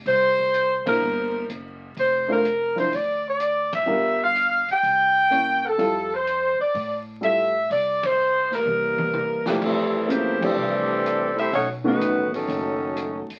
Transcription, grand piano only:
X:1
M:4/4
L:1/8
Q:"Swing" 1/4=126
K:F
V:1 name="Grand piano"
z3 [B,DEc]3 z2 | z [A,DFc] z [F,DEc] z4 | [G,DFB] z4 z [B,_DE_d] z | [G,EFA] z4 z [G,EFA] z |
z6 z [F,A,EG]- | [F,A,EG]2 [_G,B,_DF_A] [F,=A,CE=G]2 z3 | z [^D,A,=B,^C^F]3 z4 |]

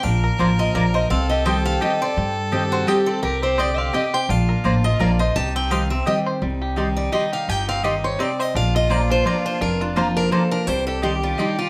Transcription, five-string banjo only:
X:1
M:3/4
L:1/8
Q:"Swing" 1/4=169
K:Cdor
V:1 name="Five-string banjo"
D B c F B c | C G c G G c | G2 G c G C | G C c C G c |
D B c F B c | G C c C G c | G, G G G, G G | G C G c C c |
D F c D c D | D F c D c D | G, G G G, G G |]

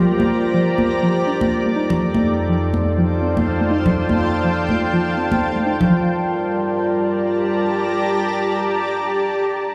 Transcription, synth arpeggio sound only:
X:1
M:4/4
L:1/16
Q:"Swing 16ths" 1/4=123
K:Gm
V:1 name="Synth arpeggio sound"
z4 F, z B, z F, z D z2 B, E F, | z4 F, z A, z F, z C z2 A, E F, | z4 F, z A, z F, z C z2 A, E F, | F,2 z12 z2 |
z16 |]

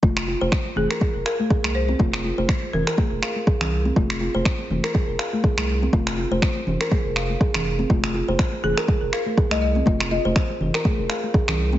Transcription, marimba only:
X:1
M:4/4
L:1/16
Q:"Swing 16ths" 1/4=122
K:Fm
V:1 name="Marimba"
z6 A2 z2 B2 z2 c2 | z6 B6 z4 | z16 | z16 |
z6 A2 z2 B2 z e e z | z2 e6 z8 |]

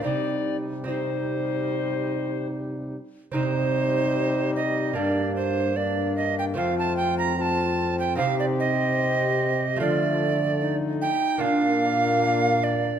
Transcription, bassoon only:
X:1
M:4/4
L:1/8
Q:1/4=74
K:Cdor
V:1 name="Bassoon"
G,2 G,4- G, z | G,4 B,2 B,2 | C2 C2 C4 | A,3 z B,4 |]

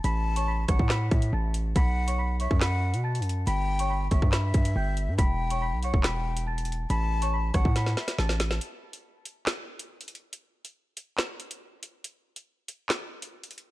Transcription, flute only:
X:1
M:4/4
L:1/8
Q:1/4=140
K:Amix
V:1 name="Flute"
a3 f2 e z2 | f3 e f2 z2 | g3 e e4 | g3 f g2 z2 |
a3 f2 e z2 | z8 | z8 | z8 |]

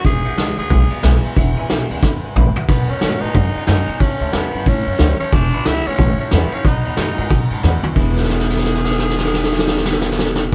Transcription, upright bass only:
X:1
M:4/4
L:1/8
Q:"Swing" 1/4=182
K:Emix
V:1 name="Upright bass" clef=bass
E,,, A,,, C,, D,, B,,, z B,,, z | E,,, A,,, B,,, C,, E,, C,, A,,, z | B,,, E,, G,, A,, F,, z F,, z | A,,, D,, E,, F,, A,, F,, D,, z |
E,,, A,,, C,, D,, A,,, z E,, z | B,,, E,, F,, G,, B,, G,, E,, z | E,,,8- | E,,,8 |]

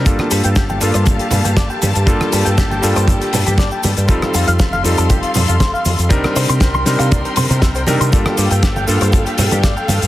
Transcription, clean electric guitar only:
X:1
M:4/4
L:1/16
Q:1/4=119
K:Gm
V:1 name="Clean electric guitar"
z2 G g G g z c A G G, G d g G z | z2 G g G g z c A G G, G d g G z | z2 F f F f z A G F F, F c f F z | z2 c c' c c' z f d c c' c C c C c' |
d z G g G g z c A G G, G d g G z |]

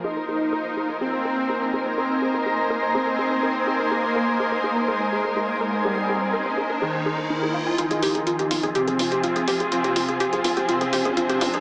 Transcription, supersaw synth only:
X:1
M:4/4
L:1/8
Q:1/4=124
K:Fm
V:1 name="Supersaw synth"
E4 C4 | C2 z2 C2 C2 | B,4 A,4 | G,2 z2 E,2 E,2 |
[E,E]4 [C,C]4 | [C,C]2 z2 [C,C]2 [C,C]2 |]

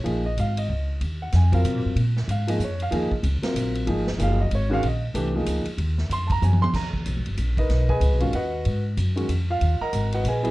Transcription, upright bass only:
X:1
M:3/4
L:1/8
Q:"Swing" 1/4=188
K:Ebdor
V:1 name="Upright bass" clef=bass
B,,,2 A,,,2 D,,2 | E,,2 F,,2 (3C, B,, A,, | B,,2 A,,2 F,,2 | E,, z D,, z B,,,2 |
A,,,2 G,,,2 A,,,2 | B,,,2 C,,2 D,, z | E,,2 F,,2 G,,2 | [K:G#dor] D,,2 (3B,,, G,,, F,,, A,,,2 |
B,,,2 (3C,, B,,, G,,, D,,2 | G,,2 F,,2 E,,2 | D,, z G,,,2 A,,,2 |]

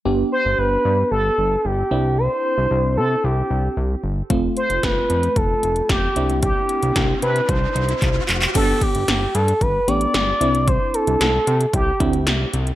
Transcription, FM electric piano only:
X:1
M:4/4
L:1/8
Q:1/4=113
K:C
V:1 name="FM electric piano"
[B,DG]6- [B,DG] [CDE]- | [CDE]6- [CDE] z | [A,CF]6- [A,CF] [CDE]- | [CDE]6- [CDE] z |
[B,DG]2 z3 [B,DG]2 [CDE]- | [CDE]2 z3 [CDE]2 z |]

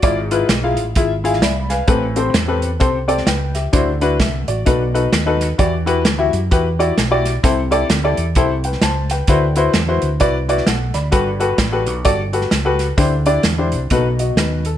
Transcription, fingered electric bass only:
X:1
M:4/4
L:1/8
Q:"Swing" 1/4=130
K:Em
V:1 name="Fingered electric bass" clef=bass
^G,,,2 B,,, A,,, G,,,2 C,,2 | A,,,2 E,,2 C,,2 ^C,,2 | D,,2 C,, A,,, B,,,2 ^D,,2 | E,,2 D,, F,, E,,2 B,,,2 |
C,,2 D,, E,, C,,2 ^C,,2 | D,,2 E,, D,, C,,2 B,,, D,, | G,,,2 A,,, B,,, G,,,2 ^C,,2 | D,,2 E,, C,, B,,,2 ^D,,2 |]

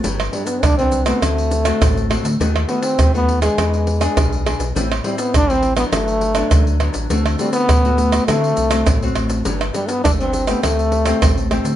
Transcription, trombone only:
X:1
M:4/4
L:1/16
Q:1/4=102
K:G
V:1 name="Trombone"
z2 G, B, D C2 B, A,6 z2 | z2 B, C2 B,2 _A,6- A, z2 | z2 G, B, D C2 B, A,6 z2 | z2 G, B,4- B, A,6 z2 |
z2 G, B, D C2 B, A,6 z2 |]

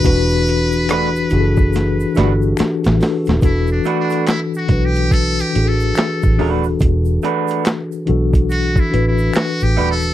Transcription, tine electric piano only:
X:1
M:4/4
L:1/8
Q:"Swing 16ths" 1/4=71
K:Em
V:1 name="Tine electric piano"
[E,DFB]2 z [E,DF^GA]2 [E,DF=GA]2 [E,DFA] | [E,DFA]2 z [E,DFB]2 [E,DF^GA]2 [E,DFA]- | [E,DFA]2 z [E,DFA]2 [E,DFB]2 z |]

